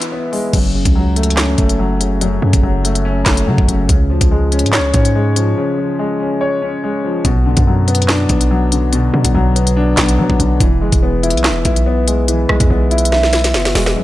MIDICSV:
0, 0, Header, 1, 4, 480
1, 0, Start_track
1, 0, Key_signature, 3, "minor"
1, 0, Tempo, 419580
1, 612, Time_signature, 4, 2, 24, 8
1, 16061, End_track
2, 0, Start_track
2, 0, Title_t, "Grand piano"
2, 0, Program_c, 0, 0
2, 0, Control_c, 0, 64, 127
2, 0, Note_on_c, 0, 52, 92
2, 0, Note_on_c, 0, 56, 81
2, 0, Note_on_c, 0, 59, 87
2, 0, Note_on_c, 0, 64, 82
2, 0, Note_on_c, 0, 76, 100
2, 120, Note_off_c, 0, 59, 0
2, 132, Note_off_c, 0, 56, 0
2, 137, Note_on_c, 0, 59, 87
2, 369, Note_on_c, 0, 56, 82
2, 611, Note_off_c, 0, 56, 0
2, 614, Note_off_c, 0, 59, 0
2, 614, Note_off_c, 0, 64, 0
2, 614, Note_off_c, 0, 76, 0
2, 614, Note_on_c, 0, 42, 89
2, 628, Control_c, 0, 64, 0
2, 636, Note_off_c, 0, 52, 0
2, 830, Control_c, 0, 64, 127
2, 851, Note_on_c, 0, 49, 80
2, 1090, Note_on_c, 0, 54, 83
2, 1330, Note_on_c, 0, 57, 91
2, 1574, Note_on_c, 0, 61, 92
2, 1796, Note_off_c, 0, 57, 0
2, 1813, Note_off_c, 0, 42, 0
2, 1813, Note_on_c, 0, 57, 91
2, 2032, Note_off_c, 0, 54, 0
2, 2049, Note_on_c, 0, 54, 88
2, 2051, Note_off_c, 0, 49, 0
2, 2290, Note_on_c, 0, 49, 85
2, 2533, Note_on_c, 0, 42, 96
2, 2753, Note_off_c, 0, 49, 0
2, 2770, Note_on_c, 0, 49, 83
2, 2773, Note_off_c, 0, 61, 0
2, 2994, Note_off_c, 0, 54, 0
2, 3011, Note_on_c, 0, 54, 87
2, 3012, Note_off_c, 0, 57, 0
2, 3251, Note_on_c, 0, 57, 88
2, 3490, Note_on_c, 0, 61, 108
2, 3711, Note_off_c, 0, 57, 0
2, 3729, Note_on_c, 0, 57, 87
2, 3732, Note_off_c, 0, 42, 0
2, 3952, Note_off_c, 0, 54, 0
2, 3969, Note_on_c, 0, 54, 88
2, 3971, Note_off_c, 0, 49, 0
2, 4207, Note_on_c, 0, 49, 80
2, 4430, Note_off_c, 0, 49, 0
2, 4447, Note_on_c, 0, 49, 93
2, 4450, Note_off_c, 0, 57, 0
2, 4451, Note_off_c, 0, 54, 0
2, 4451, Note_off_c, 0, 61, 0
2, 4467, Control_c, 0, 64, 0
2, 4650, Control_c, 0, 64, 127
2, 4690, Note_on_c, 0, 53, 82
2, 4934, Note_on_c, 0, 56, 86
2, 5173, Note_on_c, 0, 61, 94
2, 5409, Note_on_c, 0, 73, 105
2, 5633, Note_off_c, 0, 61, 0
2, 5649, Note_off_c, 0, 49, 0
2, 5650, Note_on_c, 0, 61, 89
2, 5879, Note_off_c, 0, 56, 0
2, 5891, Note_off_c, 0, 53, 0
2, 5896, Note_on_c, 0, 56, 88
2, 6134, Note_on_c, 0, 53, 90
2, 6375, Note_on_c, 0, 49, 99
2, 6592, Note_off_c, 0, 53, 0
2, 6610, Note_off_c, 0, 73, 0
2, 6610, Note_on_c, 0, 53, 81
2, 6836, Note_off_c, 0, 56, 0
2, 6851, Note_off_c, 0, 61, 0
2, 6853, Note_on_c, 0, 56, 94
2, 7093, Note_on_c, 0, 61, 84
2, 7330, Note_on_c, 0, 73, 100
2, 7555, Note_off_c, 0, 61, 0
2, 7573, Note_off_c, 0, 49, 0
2, 7573, Note_on_c, 0, 61, 88
2, 7802, Note_off_c, 0, 56, 0
2, 7811, Note_off_c, 0, 53, 0
2, 7819, Note_on_c, 0, 56, 87
2, 8053, Note_on_c, 0, 53, 86
2, 8291, Note_off_c, 0, 73, 0
2, 8292, Note_off_c, 0, 53, 0
2, 8292, Note_off_c, 0, 61, 0
2, 8293, Note_on_c, 0, 47, 101
2, 8296, Note_off_c, 0, 56, 0
2, 8305, Control_c, 0, 64, 0
2, 8477, Control_c, 0, 64, 127
2, 8531, Note_on_c, 0, 50, 82
2, 8776, Note_on_c, 0, 54, 88
2, 9014, Note_on_c, 0, 59, 89
2, 9255, Note_on_c, 0, 62, 102
2, 9478, Note_off_c, 0, 59, 0
2, 9492, Note_off_c, 0, 47, 0
2, 9495, Note_on_c, 0, 59, 86
2, 9714, Note_off_c, 0, 54, 0
2, 9731, Note_on_c, 0, 54, 88
2, 9732, Note_off_c, 0, 50, 0
2, 9975, Note_on_c, 0, 50, 78
2, 10211, Note_on_c, 0, 47, 98
2, 10438, Note_off_c, 0, 50, 0
2, 10454, Note_off_c, 0, 62, 0
2, 10455, Note_on_c, 0, 50, 78
2, 10677, Note_off_c, 0, 54, 0
2, 10693, Note_off_c, 0, 59, 0
2, 10694, Note_on_c, 0, 54, 96
2, 10932, Note_on_c, 0, 59, 84
2, 11172, Note_on_c, 0, 62, 108
2, 11393, Note_off_c, 0, 59, 0
2, 11410, Note_on_c, 0, 59, 88
2, 11411, Note_off_c, 0, 47, 0
2, 11632, Note_off_c, 0, 54, 0
2, 11650, Note_on_c, 0, 54, 87
2, 11653, Note_off_c, 0, 50, 0
2, 11891, Note_on_c, 0, 50, 80
2, 12131, Note_off_c, 0, 50, 0
2, 12131, Note_off_c, 0, 54, 0
2, 12131, Note_off_c, 0, 59, 0
2, 12131, Note_on_c, 0, 52, 93
2, 12132, Note_off_c, 0, 62, 0
2, 12148, Control_c, 0, 64, 0
2, 12329, Control_c, 0, 64, 127
2, 12369, Note_on_c, 0, 56, 83
2, 12614, Note_on_c, 0, 59, 93
2, 12848, Note_on_c, 0, 64, 91
2, 13091, Note_on_c, 0, 76, 98
2, 13311, Note_off_c, 0, 64, 0
2, 13328, Note_on_c, 0, 64, 86
2, 13331, Note_off_c, 0, 52, 0
2, 13553, Note_off_c, 0, 59, 0
2, 13570, Note_off_c, 0, 56, 0
2, 13570, Note_on_c, 0, 59, 93
2, 13812, Note_on_c, 0, 56, 82
2, 14050, Note_on_c, 0, 52, 91
2, 14273, Note_off_c, 0, 56, 0
2, 14290, Note_on_c, 0, 56, 82
2, 14291, Note_off_c, 0, 76, 0
2, 14515, Note_off_c, 0, 59, 0
2, 14530, Note_off_c, 0, 64, 0
2, 14533, Note_on_c, 0, 59, 89
2, 14772, Note_on_c, 0, 64, 93
2, 15014, Note_on_c, 0, 76, 107
2, 15237, Note_off_c, 0, 64, 0
2, 15251, Note_off_c, 0, 52, 0
2, 15254, Note_on_c, 0, 64, 88
2, 15478, Note_off_c, 0, 59, 0
2, 15491, Note_off_c, 0, 56, 0
2, 15495, Note_on_c, 0, 59, 84
2, 15728, Note_on_c, 0, 56, 87
2, 15970, Note_off_c, 0, 56, 0
2, 15973, Note_off_c, 0, 59, 0
2, 15973, Note_off_c, 0, 64, 0
2, 15973, Note_off_c, 0, 76, 0
2, 15973, Note_on_c, 0, 42, 86
2, 15988, Control_c, 0, 64, 0
2, 16061, Note_off_c, 0, 42, 0
2, 16061, End_track
3, 0, Start_track
3, 0, Title_t, "808-style bass"
3, 0, Program_c, 1, 38
3, 612, Note_on_c, 1, 30, 116
3, 965, Note_off_c, 1, 30, 0
3, 979, Note_on_c, 1, 37, 104
3, 1779, Note_off_c, 1, 37, 0
3, 1812, Note_on_c, 1, 30, 103
3, 2733, Note_off_c, 1, 30, 0
3, 2772, Note_on_c, 1, 42, 106
3, 2894, Note_off_c, 1, 42, 0
3, 2899, Note_on_c, 1, 30, 104
3, 3007, Note_off_c, 1, 30, 0
3, 3012, Note_on_c, 1, 30, 108
3, 3703, Note_off_c, 1, 30, 0
3, 3732, Note_on_c, 1, 30, 108
3, 3972, Note_on_c, 1, 49, 103
3, 3989, Note_off_c, 1, 30, 0
3, 4093, Note_off_c, 1, 49, 0
3, 4099, Note_on_c, 1, 30, 104
3, 4204, Note_off_c, 1, 30, 0
3, 4211, Note_on_c, 1, 30, 108
3, 4442, Note_off_c, 1, 30, 0
3, 4451, Note_on_c, 1, 37, 107
3, 4692, Note_on_c, 1, 38, 100
3, 4709, Note_off_c, 1, 37, 0
3, 4812, Note_off_c, 1, 38, 0
3, 4818, Note_on_c, 1, 37, 105
3, 5298, Note_on_c, 1, 44, 94
3, 5315, Note_off_c, 1, 37, 0
3, 5475, Note_on_c, 1, 37, 97
3, 5492, Note_off_c, 1, 44, 0
3, 5643, Note_off_c, 1, 37, 0
3, 5652, Note_on_c, 1, 44, 106
3, 6343, Note_off_c, 1, 44, 0
3, 8292, Note_on_c, 1, 35, 113
3, 8645, Note_off_c, 1, 35, 0
3, 8660, Note_on_c, 1, 42, 102
3, 9459, Note_off_c, 1, 42, 0
3, 9493, Note_on_c, 1, 35, 107
3, 10414, Note_off_c, 1, 35, 0
3, 10452, Note_on_c, 1, 47, 103
3, 10574, Note_off_c, 1, 47, 0
3, 10579, Note_on_c, 1, 35, 107
3, 10687, Note_off_c, 1, 35, 0
3, 10692, Note_on_c, 1, 35, 108
3, 11383, Note_off_c, 1, 35, 0
3, 11412, Note_on_c, 1, 35, 107
3, 11653, Note_on_c, 1, 54, 99
3, 11670, Note_off_c, 1, 35, 0
3, 11773, Note_off_c, 1, 54, 0
3, 11779, Note_on_c, 1, 35, 102
3, 11885, Note_off_c, 1, 35, 0
3, 11892, Note_on_c, 1, 35, 109
3, 12122, Note_off_c, 1, 35, 0
3, 12132, Note_on_c, 1, 28, 112
3, 12372, Note_on_c, 1, 30, 102
3, 12389, Note_off_c, 1, 28, 0
3, 12493, Note_off_c, 1, 30, 0
3, 12499, Note_on_c, 1, 28, 104
3, 12979, Note_on_c, 1, 35, 101
3, 12996, Note_off_c, 1, 28, 0
3, 13156, Note_on_c, 1, 28, 95
3, 13173, Note_off_c, 1, 35, 0
3, 13323, Note_off_c, 1, 28, 0
3, 13332, Note_on_c, 1, 35, 108
3, 14253, Note_off_c, 1, 35, 0
3, 14291, Note_on_c, 1, 35, 104
3, 14414, Note_off_c, 1, 35, 0
3, 14419, Note_on_c, 1, 40, 103
3, 14527, Note_off_c, 1, 40, 0
3, 14532, Note_on_c, 1, 35, 111
3, 15491, Note_on_c, 1, 30, 100
3, 15509, Note_off_c, 1, 35, 0
3, 15720, Note_off_c, 1, 30, 0
3, 15732, Note_on_c, 1, 28, 107
3, 15962, Note_off_c, 1, 28, 0
3, 16061, End_track
4, 0, Start_track
4, 0, Title_t, "Drums"
4, 18, Note_on_c, 9, 42, 77
4, 132, Note_off_c, 9, 42, 0
4, 376, Note_on_c, 9, 46, 57
4, 490, Note_off_c, 9, 46, 0
4, 612, Note_on_c, 9, 36, 123
4, 612, Note_on_c, 9, 42, 90
4, 612, Note_on_c, 9, 49, 102
4, 726, Note_off_c, 9, 36, 0
4, 726, Note_off_c, 9, 42, 0
4, 726, Note_off_c, 9, 49, 0
4, 977, Note_on_c, 9, 42, 82
4, 979, Note_on_c, 9, 36, 109
4, 1091, Note_off_c, 9, 42, 0
4, 1094, Note_off_c, 9, 36, 0
4, 1332, Note_on_c, 9, 42, 64
4, 1411, Note_off_c, 9, 42, 0
4, 1411, Note_on_c, 9, 42, 64
4, 1492, Note_off_c, 9, 42, 0
4, 1492, Note_on_c, 9, 42, 64
4, 1566, Note_on_c, 9, 39, 109
4, 1570, Note_on_c, 9, 38, 127
4, 1606, Note_off_c, 9, 42, 0
4, 1680, Note_off_c, 9, 39, 0
4, 1685, Note_off_c, 9, 38, 0
4, 1807, Note_on_c, 9, 42, 66
4, 1812, Note_on_c, 9, 36, 98
4, 1922, Note_off_c, 9, 42, 0
4, 1926, Note_off_c, 9, 36, 0
4, 1938, Note_on_c, 9, 42, 77
4, 2052, Note_off_c, 9, 42, 0
4, 2295, Note_on_c, 9, 42, 84
4, 2410, Note_off_c, 9, 42, 0
4, 2532, Note_on_c, 9, 42, 90
4, 2646, Note_off_c, 9, 42, 0
4, 2897, Note_on_c, 9, 42, 82
4, 2899, Note_on_c, 9, 36, 107
4, 3012, Note_off_c, 9, 42, 0
4, 3014, Note_off_c, 9, 36, 0
4, 3259, Note_on_c, 9, 42, 76
4, 3373, Note_off_c, 9, 42, 0
4, 3379, Note_on_c, 9, 42, 73
4, 3494, Note_off_c, 9, 42, 0
4, 3727, Note_on_c, 9, 42, 70
4, 3728, Note_on_c, 9, 39, 91
4, 3732, Note_on_c, 9, 36, 102
4, 3733, Note_on_c, 9, 38, 113
4, 3841, Note_off_c, 9, 42, 0
4, 3842, Note_off_c, 9, 39, 0
4, 3846, Note_off_c, 9, 36, 0
4, 3847, Note_off_c, 9, 38, 0
4, 3858, Note_on_c, 9, 42, 78
4, 3972, Note_off_c, 9, 42, 0
4, 4099, Note_on_c, 9, 36, 96
4, 4213, Note_off_c, 9, 36, 0
4, 4216, Note_on_c, 9, 42, 76
4, 4331, Note_off_c, 9, 42, 0
4, 4451, Note_on_c, 9, 42, 90
4, 4452, Note_on_c, 9, 36, 127
4, 4566, Note_off_c, 9, 36, 0
4, 4566, Note_off_c, 9, 42, 0
4, 4816, Note_on_c, 9, 42, 82
4, 4819, Note_on_c, 9, 36, 108
4, 4931, Note_off_c, 9, 42, 0
4, 4933, Note_off_c, 9, 36, 0
4, 5171, Note_on_c, 9, 42, 63
4, 5252, Note_off_c, 9, 42, 0
4, 5252, Note_on_c, 9, 42, 64
4, 5332, Note_off_c, 9, 42, 0
4, 5332, Note_on_c, 9, 42, 63
4, 5407, Note_on_c, 9, 39, 108
4, 5412, Note_on_c, 9, 38, 127
4, 5446, Note_off_c, 9, 42, 0
4, 5521, Note_off_c, 9, 39, 0
4, 5526, Note_off_c, 9, 38, 0
4, 5647, Note_on_c, 9, 42, 68
4, 5652, Note_on_c, 9, 36, 102
4, 5761, Note_off_c, 9, 42, 0
4, 5766, Note_off_c, 9, 36, 0
4, 5778, Note_on_c, 9, 42, 78
4, 5892, Note_off_c, 9, 42, 0
4, 6135, Note_on_c, 9, 42, 84
4, 6250, Note_off_c, 9, 42, 0
4, 8291, Note_on_c, 9, 42, 90
4, 8292, Note_on_c, 9, 36, 127
4, 8406, Note_off_c, 9, 42, 0
4, 8407, Note_off_c, 9, 36, 0
4, 8657, Note_on_c, 9, 42, 85
4, 8659, Note_on_c, 9, 36, 105
4, 8771, Note_off_c, 9, 42, 0
4, 8774, Note_off_c, 9, 36, 0
4, 9012, Note_on_c, 9, 42, 64
4, 9092, Note_off_c, 9, 42, 0
4, 9092, Note_on_c, 9, 42, 63
4, 9172, Note_off_c, 9, 42, 0
4, 9172, Note_on_c, 9, 42, 62
4, 9247, Note_on_c, 9, 39, 109
4, 9252, Note_on_c, 9, 38, 120
4, 9286, Note_off_c, 9, 42, 0
4, 9361, Note_off_c, 9, 39, 0
4, 9366, Note_off_c, 9, 38, 0
4, 9487, Note_on_c, 9, 42, 68
4, 9492, Note_on_c, 9, 36, 103
4, 9601, Note_off_c, 9, 42, 0
4, 9607, Note_off_c, 9, 36, 0
4, 9618, Note_on_c, 9, 42, 76
4, 9732, Note_off_c, 9, 42, 0
4, 9976, Note_on_c, 9, 42, 83
4, 10090, Note_off_c, 9, 42, 0
4, 10212, Note_on_c, 9, 42, 88
4, 10326, Note_off_c, 9, 42, 0
4, 10577, Note_on_c, 9, 42, 83
4, 10579, Note_on_c, 9, 36, 106
4, 10691, Note_off_c, 9, 42, 0
4, 10694, Note_off_c, 9, 36, 0
4, 10938, Note_on_c, 9, 42, 73
4, 11052, Note_off_c, 9, 42, 0
4, 11060, Note_on_c, 9, 42, 75
4, 11174, Note_off_c, 9, 42, 0
4, 11407, Note_on_c, 9, 42, 68
4, 11408, Note_on_c, 9, 39, 91
4, 11412, Note_on_c, 9, 36, 98
4, 11413, Note_on_c, 9, 38, 115
4, 11521, Note_off_c, 9, 42, 0
4, 11522, Note_off_c, 9, 39, 0
4, 11527, Note_off_c, 9, 36, 0
4, 11527, Note_off_c, 9, 38, 0
4, 11538, Note_on_c, 9, 42, 76
4, 11652, Note_off_c, 9, 42, 0
4, 11779, Note_on_c, 9, 36, 95
4, 11893, Note_off_c, 9, 36, 0
4, 11895, Note_on_c, 9, 42, 80
4, 12010, Note_off_c, 9, 42, 0
4, 12132, Note_on_c, 9, 36, 125
4, 12132, Note_on_c, 9, 42, 90
4, 12246, Note_off_c, 9, 36, 0
4, 12246, Note_off_c, 9, 42, 0
4, 12497, Note_on_c, 9, 42, 83
4, 12499, Note_on_c, 9, 36, 104
4, 12612, Note_off_c, 9, 42, 0
4, 12614, Note_off_c, 9, 36, 0
4, 12852, Note_on_c, 9, 42, 63
4, 12932, Note_off_c, 9, 42, 0
4, 12932, Note_on_c, 9, 42, 65
4, 13012, Note_off_c, 9, 42, 0
4, 13012, Note_on_c, 9, 42, 62
4, 13086, Note_on_c, 9, 39, 109
4, 13091, Note_on_c, 9, 38, 125
4, 13126, Note_off_c, 9, 42, 0
4, 13201, Note_off_c, 9, 39, 0
4, 13206, Note_off_c, 9, 38, 0
4, 13327, Note_on_c, 9, 42, 68
4, 13332, Note_on_c, 9, 36, 101
4, 13441, Note_off_c, 9, 42, 0
4, 13446, Note_off_c, 9, 36, 0
4, 13458, Note_on_c, 9, 42, 75
4, 13572, Note_off_c, 9, 42, 0
4, 13815, Note_on_c, 9, 42, 84
4, 13929, Note_off_c, 9, 42, 0
4, 14051, Note_on_c, 9, 42, 92
4, 14165, Note_off_c, 9, 42, 0
4, 14291, Note_on_c, 9, 37, 100
4, 14406, Note_off_c, 9, 37, 0
4, 14417, Note_on_c, 9, 42, 82
4, 14419, Note_on_c, 9, 36, 103
4, 14531, Note_off_c, 9, 42, 0
4, 14533, Note_off_c, 9, 36, 0
4, 14771, Note_on_c, 9, 42, 45
4, 14851, Note_off_c, 9, 42, 0
4, 14851, Note_on_c, 9, 42, 61
4, 14932, Note_off_c, 9, 42, 0
4, 14932, Note_on_c, 9, 42, 76
4, 15012, Note_on_c, 9, 38, 63
4, 15046, Note_off_c, 9, 42, 0
4, 15126, Note_off_c, 9, 38, 0
4, 15140, Note_on_c, 9, 38, 58
4, 15247, Note_on_c, 9, 42, 71
4, 15252, Note_off_c, 9, 38, 0
4, 15252, Note_on_c, 9, 38, 81
4, 15362, Note_off_c, 9, 42, 0
4, 15366, Note_off_c, 9, 38, 0
4, 15378, Note_on_c, 9, 42, 77
4, 15379, Note_on_c, 9, 38, 75
4, 15492, Note_off_c, 9, 42, 0
4, 15493, Note_off_c, 9, 38, 0
4, 15493, Note_on_c, 9, 38, 92
4, 15607, Note_off_c, 9, 38, 0
4, 15620, Note_on_c, 9, 38, 89
4, 15733, Note_off_c, 9, 38, 0
4, 15733, Note_on_c, 9, 38, 111
4, 15737, Note_on_c, 9, 46, 61
4, 15848, Note_off_c, 9, 38, 0
4, 15851, Note_off_c, 9, 46, 0
4, 15860, Note_on_c, 9, 38, 93
4, 15974, Note_off_c, 9, 38, 0
4, 16061, End_track
0, 0, End_of_file